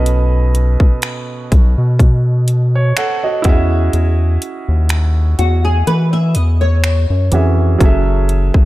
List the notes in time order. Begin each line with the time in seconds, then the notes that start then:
Already playing: B1 B2 B3 C#4 A4 D#5 B5
0.06 closed hi-hat
0.55 closed hi-hat
0.80 B1, kick
1.02 finger snap, closed hi-hat
1.52 B1, kick, closed hi-hat
1.78 B2
1.99 kick, closed hi-hat
2.48 closed hi-hat
2.75 C#5
2.97 A4 F#5, finger snap, closed hi-hat
3.24 F#4 D#5
3.42 E2 C#4 E4 F#4, kick, closed hi-hat
3.47 G#4 E5
3.93 E2, closed hi-hat
4.42 closed hi-hat
4.69 D#2
4.89 finger snap, closed hi-hat
5.39 E2 F#4, closed hi-hat
5.65 G#4
5.87 E3 B4, closed hi-hat
6.13 E5
6.35 E2 D#5, closed hi-hat
6.61 C#5
6.84 finger snap, closed hi-hat
7.10 F#2
7.32 F2 E3 C#4 F#4 G#4 E5, closed hi-hat
7.78 F#1 F#3 C#4 G#4, kick, closed hi-hat
7.83 A4 E5
8.29 closed hi-hat
8.54 G#1, kick